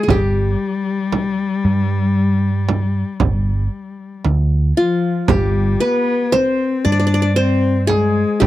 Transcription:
0.03 qanun G#4
0.08 picked electric bass G1, cello G3, qanun G4, frame drum
1.13 frame drum
1.65 picked electric bass G2
2.69 frame drum
3.20 picked electric bass G1, frame drum
4.25 picked electric bass D2, frame drum
4.77 cello F3, qanun F4
5.28 picked electric bass G1, cello G3, qanun G4, frame drum
5.80 cello B3, qanun B4
6.32 cello C4, qanun C5, frame drum
6.84 picked electric bass G2, cello D4, qanun D5
6.92 qanun D5
7.00 qanun D5
7.07 qanun D5
7.14 qanun D5
7.22 qanun D5
7.36 cello C4, qanun C5
7.87 cello G#3, qanun G#4, frame drum
8.40 picked electric bass G1, cello G3, qanun G4, frame drum

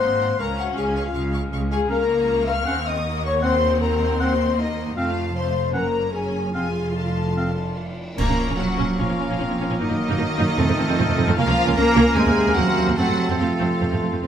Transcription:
Already playing: clarinet A#3, french horn section C5, oboe F#5, flute section C6, violin section C6
0.01 double bass section G#1, cello section G#2, viola section C4, violin section F#5 A#5
0.21 violin section F#5 A#5
0.39 cello section C#2, double bass section C#2, clarinet C#4, viola section C#4, french horn section A#4, violin section F5 A#5 C#6, oboe F5, flute section A#5
0.58 french horn section F#4, violin section F5 F#5 C#6, flute section F#5
0.76 cello section C#2, double bass section C#2, french horn section G#4, violin section F5 G#5 C#6, flute section G#5
0.96 violin section F5 C#6
1.04 french horn section F4, violin section F5, flute section F5
1.14 cello section C#2, double bass section C#2, viola section G#3, violin section F5 C#6
1.33 violin section F5 C#6
1.52 cello section C#2, double bass section C#2, violin section F5 C#6
1.70 french horn section G#4, violin section F5 G#5 C#6, flute section G#5
1.89 cello section C#2, double bass section C#2, viola section A#3, clarinet C#4, french horn section A#4, oboe F5, violin section F5 A#5 C#6, flute section A#5
2.47 french horn section F5, flute section F6, violin section F6
2.66 double bass section D#2, cello section D#2, viola section C4, clarinet C#4, oboe F#5, violin section F#5
2.86 french horn section D#5, flute section D#6, violin section D#6
3.05 viola section A#3
3.24 french horn section C#5, flute section C#6, violin section C#6
3.42 viola section C4, clarinet C4, french horn section C5, oboe F#5, violin section C6, flute section C6
3.80 french horn section A#4, flute section A#5, violin section A#5
4.19 clarinet C4, french horn section C5, oboe F#5, violin section C6, flute section C6
4.58 viola section A#3, french horn section D#4, violin section D#5, flute section D#5
4.96 double bass section F1, cello section F2, viola section A3, clarinet C4, french horn section F4, violin section F5 A5, oboe F5, flute section F5
5.35 viola section A3, french horn section C5, flute section C6, violin section C6
5.73 double bass section F#1, cello section F#2, viola section A#3, clarinet C#4, french horn section A#4, violin section C#5 A#5, oboe F#5, flute section A#5
6.12 viola section C#4, french horn section G#4, flute section G#5, violin section G#5
6.54 double bass section F1, cello section F2, clarinet C4, viola section F4, french horn section G#4, oboe F5, violin section F5 G#5 C6, flute section G#5
6.95 french horn section A4, flute section A5, violin section A5
7.36 clarinet C4, oboe F5
8.17 double bass section A#1, trombone section F3 C#4, clarinet A#3, cello section A#3, viola section C#4, french horn section A#4, violin section A#4 A#5, oboe A#4, flute section C#6, concert bass drum, crash
8.28 double bass section A#1, viola section C#4
8.48 double bass section A#1, viola section C#4
8.58 double bass section A#1, cello section F#3, viola section C#4, french horn section F#4, violin section F#4 F#5
8.78 double bass section A#1, viola section C#4
8.98 double bass section A#1, trombone section F3 C#4, cello section F3, viola section C#4, french horn section F4, violin section F4 F5
9.09 double bass section A#1, viola section C#4
9.19 double bass section A#1, viola section C#4
9.29 double bass section A#1, viola section C#4
9.39 double bass section A#1, trombone section C4, viola section C#4
9.49 double bass section A#1, viola section C#4
9.59 double bass section A#1, viola section C#4
9.70 double bass section A#1, viola section C#4
9.79 double bass section F#2, cello section D#3, trombone section F#3 A#3, viola section A#3 D#4, violin section D#4 D#5, french horn section D#4, flute section D#6
9.89 double bass section F#2, viola section A#3 D#4
10.08 double bass section F#2, viola section A#3 D#4
10.18 double bass section F#2, viola section A#3 D#4
10.38 double bass section F#2, viola section A#3 D#4
10.58 double bass section F2, trombone section F3 A3, viola section A3 C4, clarinet C4, oboe A4, flute section F6
10.68 double bass section F2, viola section A3 C4
10.78 double bass section F2, viola section A3 C4
10.88 double bass section F2, viola section A3 C4
10.98 double bass section F2, viola section A3 C4
11.08 double bass section F2, viola section A3 C4
11.17 double bass section F2, viola section A3 C4
11.27 double bass section F2, viola section A3 C4
11.37 double bass section C#2, cello section F3, trombone section F3 A#3, viola section A#3 C#4, clarinet C#4, french horn section F4, violin section F4 F5, oboe A#4
11.47 double bass section C#2, viola section A#3 C#4
11.66 double bass section C#2, viola section A#3 C#4
11.76 double bass section C#2, trombone section F3 A#3, cello section A#3, viola section A#3 C#4, french horn section A#4, violin section A#4 A#5
11.96 double bass section C#2, viola section A#3 C#4
12.15 double bass section D#2, trombone section C3 A#3, cello section G#3, viola section A#3 C4, violin section G#4 G#5, french horn section G#4, flute section C6
12.26 double bass section D#2, viola section A#3 C4
12.36 double bass section D#2, viola section A#3 C4
12.46 double bass section D#2, viola section A#3 C4
12.55 double bass section D#2, trombone section C3 A#3, cello section F#3, viola section A#3 C4, french horn section F#4, violin section F#4 F#5
12.67 double bass section D#2, viola section A#3 C4
12.77 double bass section D#2, viola section A#3 C4
12.88 double bass section D#2, viola section A#3 C4
12.96 double bass section F2, trombone section C3 A3, cello section F#3, viola section A3 C4, clarinet C4, violin section F#4 F#5, french horn section F#4, oboe A4
13.08 double bass section F2, viola section A3 C4
13.29 double bass section F2, viola section A3 C4
13.38 double bass section F2, trombone section C3 A3, cello section F3, viola section A3 C4, french horn section F4, violin section F4 F5
13.60 double bass section F2, viola section A3 C4
13.80 double bass section F2, viola section A3 C4
13.91 double bass section F2, viola section A3 C4
14.01 double bass section F2, viola section A3 C4
14.11 double bass section F2, viola section A3 C4
14.22 double bass section F2, viola section A3 C4

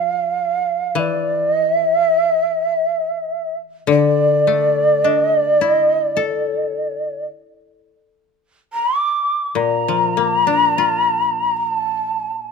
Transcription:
Already playing: koto F3, shakuhachi F5
0.95 koto E3, shakuhachi D5
1.45 shakuhachi D#5
1.75 shakuhachi E5
3.87 koto D3, shakuhachi D5
4.47 koto A3
5.04 koto D4
5.09 shakuhachi D#5
5.40 shakuhachi D5
5.61 koto E4
5.75 shakuhachi D#5
6.07 shakuhachi D5
6.17 koto A4
8.73 shakuhachi A#5
8.99 shakuhachi D6
9.55 koto A#2, shakuhachi A#5
9.88 koto F3
10.17 koto A#3
10.47 koto D4
10.78 koto F4
11.56 shakuhachi A#5
11.69 shakuhachi A5

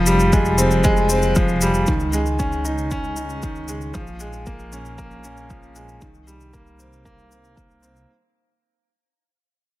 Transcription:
Already playing: detuned saw bass F1, upright piano F3
0.06 upright piano G3, shaker
0.20 shaker
0.33 upright piano G#3, kick, shaker
0.45 shaker
0.58 upright piano C4, shaker
0.71 shaker
0.84 upright piano G#3, kick, shaker
0.97 shaker
1.09 upright piano C4, shaker
1.22 shaker
1.35 upright piano F3, kick, shaker
1.48 shaker
1.61 upright piano G3, shaker
1.74 shaker
1.87 detuned saw bass C#2, upright piano D#3, kick, shaker
2.00 shaker
2.13 upright piano G#3, shaker
2.26 shaker
2.39 upright piano C#4, kick, shaker
2.52 shaker
2.65 upright piano D#4, shaker
2.78 shaker
2.91 upright piano C#4, kick, shaker
3.04 shaker
3.16 upright piano D#4, shaker
3.29 shaker
3.42 upright piano D#3, kick, shaker
3.55 shaker
3.68 upright piano G#3, shaker
3.81 shaker
3.94 detuned saw bass A#1, upright piano F3, kick, shaker
4.07 shaker
4.20 upright piano G#3, shaker
4.33 shaker
4.46 upright piano A#3, kick, shaker
4.59 shaker
4.72 upright piano C#4, shaker
4.85 shaker
4.98 upright piano A#3, kick, shaker
5.11 shaker
5.24 upright piano C#4, shaker
5.37 shaker
5.50 upright piano F3, kick, shaker
5.63 shaker
5.76 upright piano G#3, shaker
5.89 shaker
6.01 detuned saw bass C2, upright piano D#3, kick, shaker
6.14 shaker
6.27 upright piano G3, shaker
6.40 shaker
6.53 upright piano A#3, kick, shaker
6.67 shaker
6.79 upright piano C4, shaker
6.93 shaker
7.05 upright piano A#3, kick, shaker
7.19 shaker
7.31 upright piano C4, shaker
7.44 shaker
7.56 upright piano A#3, kick, shaker
7.70 shaker
7.82 upright piano C4, shaker
7.96 shaker

